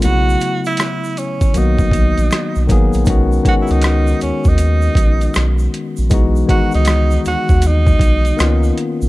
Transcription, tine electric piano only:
X:1
M:4/4
L:1/16
Q:"Swing 16ths" 1/4=79
K:B
V:1 name="Tine electric piano"
[=C,^C,F,=A,B,E]6 z2 [D,F,^A,B,F]4- [D,F,A,B,F] z [D,F,A,B,G]2 | [D,G,B,CF]2 [D,G,B,CF]6 z8 | [E,G,B,DF]2 [D,G,B,DF]6 z4 [D,A,B,C^E]4 |]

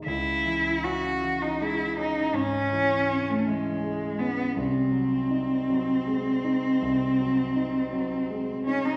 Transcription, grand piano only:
X:1
M:12/8
L:1/8
Q:3/8=54
K:G#phr
V:1 name="Grand piano" clef=bass
C,, E, C E, G, C G,, E, C E, G, C | ^B,,, F, D F, G, D B,,, F, D F, G, D |]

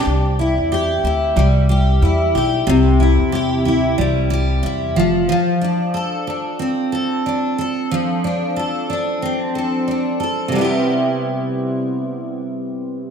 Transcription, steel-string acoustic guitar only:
X:1
M:4/4
L:1/8
Q:"Swing 16ths" 1/4=92
K:C
V:1 name="Steel-string acoustic guitar"
z E G E G, G E G | C, E G E G, G E F, | F, D A D C A D A | F, D A D C A D A |
[C,G,B,EG]8 |]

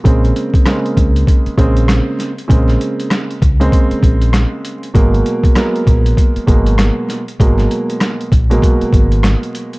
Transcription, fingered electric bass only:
X:1
M:4/4
L:1/16
Q:"Swing 16ths" 1/4=98
K:Bbphr
V:1 name="Fingered electric bass" clef=bass
B,,,2 z4 D,,2 z2 B,,,3 z3 | B,,,2 z4 D,,2 z2 B,,,3 z3 | A,,,2 z4 B,,,2 z2 A,,,3 z3 | A,,,2 z4 B,,,2 z2 A,,,3 z3 |]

